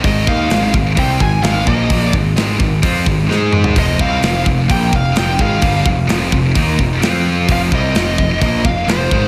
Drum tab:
HH |o---o---o---o---|o---o---o-------|o---o---o---o---|o---o---o---o---|
SD |----o-------o---|----o-------o---|----o-------o---|----o-------o---|
T2 |----------------|--------------o-|----------------|----------------|
FT |----------------|---------------o|----------------|----------------|
BD |o-o---o-o-o---o-|o-o---o-o-o-----|o-o---o-o-o---o-|o-o---o-o-o-----|

HH |o---o---o---o---|
SD |----o-------o---|
T2 |----------------|
FT |----------------|
BD |o-o---o-o-o---o-|